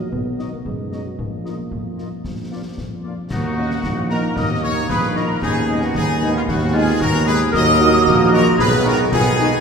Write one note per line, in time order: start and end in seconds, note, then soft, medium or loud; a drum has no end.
0.11 0.57 B1 medium
0.11 0.49 B3 medium
0.11 concert bass drum medium
0.38 0.49 F#3 soft
0.38 0.49 D#4 medium
0.38 0.48 F#4 soft
0.38 0.48 D#5 soft
0.38 0.49 D#5 medium
0.38 snare soft
0.52 0.58 A#3 medium
0.65 1.09 F#2 medium
0.65 1.08 G#3 medium
0.65 concert bass drum medium
0.91 1.02 F#3 soft
0.91 1.02 D#4 soft
0.91 1.01 F#4 soft
0.91 1.01 D#5 soft
0.91 1.02 D#5 soft
0.91 snare soft
1.06 1.18 F#3 medium
1.18 1.63 A#1 medium
1.18 2.74 A#3 medium
1.18 concert bass drum medium
1.44 1.54 A#3 soft
1.44 1.54 D#4 soft
1.44 1.54 F4 soft
1.44 1.55 F4 soft
1.44 1.54 D#5 soft
1.44 1.55 D#5 soft
1.44 snare soft
1.71 2.11 F2 soft
1.71 concert bass drum medium
1.98 2.08 A#3 soft
1.98 2.08 D#4 soft
1.98 2.07 F4 soft
1.98 2.08 F4 soft
1.98 2.07 D#5 soft
1.98 snare soft
2.24 2.68 A#1 soft
2.24 concert bass drum medium
2.24 snare soft
2.51 2.61 A#3 soft
2.51 2.61 D4 soft
2.51 2.60 F4 soft
2.51 2.61 F4 soft
2.51 2.60 D5 soft
2.51 2.61 F5 soft
2.77 3.22 F2 medium
2.77 concert bass drum medium
2.77 snare soft
3.04 3.14 A#3 soft
3.04 3.14 D4 soft
3.04 3.13 F4 soft
3.04 3.14 F4 soft
3.04 3.13 D5 soft
3.04 3.14 F5 soft
3.30 3.74 D#2 medium
3.30 5.38 D#3 medium
3.30 5.38 A#3 medium
3.30 3.55 A#3 medium
3.30 4.06 D#4 medium
3.30 4.06 F#4 loud
3.30 4.06 F#5 medium
3.30 concert bass drum medium
3.30 snare medium
3.30 crash medium
3.57 3.67 A#3 medium
3.57 3.85 C#4 medium
3.57 3.67 D#4 medium
3.71 snare medium
3.83 4.27 A#1 medium
3.83 4.88 D#4 medium
3.83 concert bass drum medium
3.83 snare medium
4.09 4.20 A#3 medium
4.09 4.20 D#4 medium
4.09 4.21 F#4 medium
4.09 4.35 A#4 loud
4.09 4.34 A#5 medium
4.09 snare medium
4.36 4.81 D#2 medium
4.36 4.48 A#4 loud
4.36 4.63 D#5 loud
4.36 4.61 D#6 medium
4.36 concert bass drum medium
4.36 snare medium
4.63 4.73 A#3 medium
4.63 4.72 D#4 medium
4.63 4.75 A#4 medium
4.63 4.88 C#5 loud
4.63 4.88 C#6 medium
4.89 5.33 A#1 medium
4.89 5.38 D#4 medium
4.89 5.14 G#4 medium
4.89 5.14 B4 loud
4.89 5.14 B5 medium
4.89 concert bass drum medium
4.89 snare medium
5.03 snare medium
5.15 5.25 A#3 medium
5.15 5.25 D#4 medium
5.15 5.27 F#4 medium
5.15 5.42 A#4 loud
5.15 5.41 A#5 medium
5.15 snare medium
5.42 5.87 D#2 medium
5.42 7.51 D#3 medium
5.42 7.51 B3 medium
5.42 5.97 C#4 medium
5.42 5.79 D#4 loud
5.42 5.80 G#4 loud
5.42 5.80 G#5 medium
5.42 concert bass drum medium
5.42 snare medium
5.42 crash soft
5.69 5.78 G#3 medium
5.69 5.78 B3 medium
5.69 5.78 D#4 medium
5.81 5.87 D#4 medium
5.81 5.97 F#4 medium
5.81 5.94 F#5 medium
5.81 snare medium
5.94 6.39 D#2 medium
5.94 6.50 B3 medium
5.94 6.32 D#4 medium
5.94 6.33 G#4 loud
5.94 6.32 G#5 medium
5.94 concert bass drum medium
5.94 snare medium
6.21 6.32 G#3 medium
6.21 6.32 B3 medium
6.21 6.32 D#4 medium
6.21 snare medium
6.34 6.40 C#4 medium
6.34 6.42 F4 loud
6.34 6.48 F5 medium
6.46 6.93 D#2 loud
6.46 6.58 D#4 medium
6.46 7.54 D#4 loud
6.46 6.73 F#4 loud
6.46 6.54 F#5 medium
6.46 concert bass drum loud
6.46 snare medium
6.72 6.84 G#3 medium
6.72 6.84 B3 medium
6.72 6.84 D#4 medium
6.72 6.98 F4 loud
6.72 6.99 G#5 loud
6.76 7.02 G#4 loud
6.99 7.45 D#2 loud
6.99 7.27 F#4 loud
6.99 7.26 A#4 loud
6.99 7.25 A#5 loud
6.99 concert bass drum medium
6.99 snare medium
7.14 snare medium
7.26 7.37 G#3 medium
7.26 7.37 B3 medium
7.26 7.37 D#4 medium
7.26 7.51 G#4 loud
7.26 7.40 B4 loud
7.26 7.33 B5 loud
7.26 snare medium
7.51 7.98 D#2 loud
7.51 8.03 F#3 loud
7.51 8.56 A#3 loud
7.51 7.66 F#4 loud
7.51 8.28 A#4 loud
7.51 8.30 D#5 loud
7.51 8.29 D#6 loud
7.51 concert bass drum loud
7.51 snare medium
7.51 crash soft
7.79 7.89 F#3 medium
7.79 7.89 A#3 medium
7.79 7.90 D#4 medium
7.79 8.60 F#4 loud
7.94 snare medium
8.07 8.51 A#1 loud
8.07 8.60 F3 loud
8.07 concert bass drum medium
8.07 snare medium
8.32 8.42 F#3 medium
8.32 8.42 A#3 medium
8.32 8.43 D#4 medium
8.32 8.59 F#4 loud
8.32 8.45 A#4 loud
8.32 8.58 A#5 loud
8.32 snare medium
8.57 9.04 B1 loud
8.57 9.12 D#3 loud
8.57 9.12 B3 loud
8.57 8.70 G#4 loud
8.57 9.12 G#4 loud
8.57 8.85 B4 loud
8.57 8.66 B5 loud
8.57 concert bass drum medium
8.57 snare medium
8.84 8.96 D#3 medium
8.84 8.96 G#3 medium
8.84 8.96 D#4 medium
8.84 9.10 F#4 loud
8.84 8.99 A#4 loud
8.84 8.92 A#5 loud
9.12 9.52 B1 loud
9.12 9.60 D#3 medium
9.12 9.60 B3 loud
9.12 9.60 D#4 loud
9.12 9.25 F4 loud
9.12 9.60 G#4 loud
9.12 9.60 G#5 loud
9.12 concert bass drum medium
9.12 snare medium
9.26 snare medium
9.38 9.49 D#3 medium
9.38 9.49 G#3 medium
9.38 9.60 D#4 medium
9.38 9.49 D#4 medium
9.38 snare medium